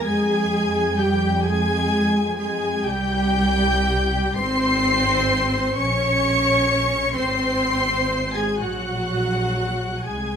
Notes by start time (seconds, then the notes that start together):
0.05 F2 G#3 G#4 G#5 G#6
0.97 G3 G4 G5 G6
1.44 G#3 G#4 G#5 G#6
2.39 G#3 G#4 G#5 G#6
2.84 C2 G3 G4 G5 G6
4.36 G#1 C4 C5 C6 C7
5.77 A#1 C#4 C#5 C#6 C#7
7.16 G#1 C4 C5 C6 C7
8.34 G#3 G#4 G#5 G#6
8.60 A#1 F#3 F#4 F#5 F#6
10.06 C2 G#3 G#4 G#5 G#6